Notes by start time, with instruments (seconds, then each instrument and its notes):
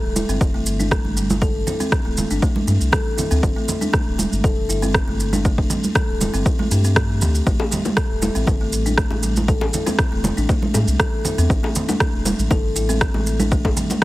0.04 analog synth bass D1
0.16 kalimba E4, high conga, shaker
0.29 analog synth bass G1, kalimba C4, shaker
0.41 analog synth bass F1, kick, shaker
0.54 kalimba A3
0.66 analog synth bass G1, shaker
0.79 kalimba D4, high conga, shaker
0.91 kalimba A3, kick, cross-stick, shaker
1.04 analog synth bass G1, high conga
1.17 kalimba G3, shaker
1.30 high conga, shaker
1.42 kalimba A4, kick, shaker
1.67 kalimba E4, low conga, shaker
1.80 kalimba C4, high conga, shaker
1.92 kick, cross-stick, shaker
2.05 analog synth bass D1, kalimba A3
2.17 high conga, low conga, shaker
2.31 analog synth bass G1, kalimba D4, shaker
2.42 kalimba A3, kick, shaker
2.56 high conga
2.67 analog synth bass G2, kalimba G3, high conga, shaker
2.81 analog synth bass C2, shaker
2.92 kalimba A4, kick, cross-stick, shaker
3.18 kalimba E4, low conga, shaker
3.31 analog synth bass D2, kalimba C4, shaker
3.43 analog synth bass G1, kick, shaker
3.56 kalimba A3
3.68 low conga, shaker
3.81 kalimba D4, high conga, shaker
3.93 kalimba A3, kick, cross-stick, shaker
4.07 analog synth bass D1
4.18 kalimba G3, high conga, shaker
4.32 analog synth bass G1, shaker
4.44 analog synth bass F1, kalimba A4, kick, shaker
4.69 analog synth bass G1, kalimba E4, shaker
4.82 kalimba C4, high conga, shaker
4.94 kick, cross-stick, shaker
5.08 analog synth bass G1, kalimba A3, high conga
5.20 shaker
5.33 kalimba D4, high conga, shaker
5.45 kalimba A3, kick, shaker
5.58 kick
5.70 kalimba G3, low conga, shaker
5.84 high conga, shaker
5.95 kalimba A4, kick, cross-stick, shaker
6.08 analog synth bass D1
6.21 kalimba E4, high conga, low conga, shaker
6.34 analog synth bass G1, kalimba C4, shaker
6.46 kick, shaker
6.59 kalimba A3, high conga
6.71 analog synth bass G2, kalimba G4, high conga, shaker
6.84 kalimba C4, shaker
6.96 kalimba A3, kick, cross-stick, shaker
7.21 analog synth bass D2, kalimba G4, low conga, shaker
7.35 shaker
7.47 analog synth bass A1, kalimba A3, kick, shaker
7.60 high bongo
7.71 kalimba G3, low conga, shaker
7.85 low bongo, high conga, shaker
7.97 kalimba A4, kick, cross-stick, shaker
8.11 analog synth bass E1
8.22 kalimba E4, low bongo, high conga, shaker
8.35 analog synth bass A1, kalimba C4, shaker
8.47 analog synth bass G1, kick, low bongo, shaker
8.61 kalimba A3
8.73 analog synth bass A1, shaker
8.86 kalimba D4, high conga, shaker
8.98 kalimba A3, kick, cross-stick, shaker
9.11 analog synth bass A1, high bongo, high conga
9.23 kalimba G3, shaker
9.36 high conga, shaker
9.48 kalimba A4, kick, shaker
9.61 high bongo
9.73 kalimba E4, low conga, shaker
9.86 kalimba C4, low bongo, high conga, shaker
9.99 kick, cross-stick, shaker
10.12 analog synth bass E1, kalimba A3
10.24 low bongo, high conga, low conga, shaker
10.37 analog synth bass A1, kalimba D4, shaker
10.49 kalimba A3, kick, low bongo, shaker
10.62 high conga
10.74 analog synth bass A2, kalimba G3, high bongo, high conga, shaker
10.88 analog synth bass C2, shaker
11.00 kalimba A4, kick, cross-stick, shaker
11.25 kalimba E4, low conga, shaker
11.38 analog synth bass E2, kalimba C4, shaker
11.50 analog synth bass A1, kick, shaker
11.63 kalimba A3, high bongo
11.75 low conga, shaker
11.88 kalimba D4, low bongo, high conga, shaker
12.00 kalimba A3, kick, cross-stick, shaker
12.14 analog synth bass E1
12.25 kalimba G3, low bongo, high conga, shaker
12.39 analog synth bass A1, shaker
12.51 analog synth bass G1, kalimba A4, kick, low bongo, shaker
12.76 analog synth bass A1, kalimba E4, shaker
12.89 kalimba C4, high conga, shaker
13.01 kick, cross-stick, shaker
13.14 analog synth bass A1, kalimba A3, high bongo, high conga
13.27 shaker
13.40 kalimba D4, high conga, shaker
13.52 kalimba A3, kick, shaker
13.65 kick, high bongo
13.77 kalimba G3, low conga, shaker
13.90 low bongo, high conga, shaker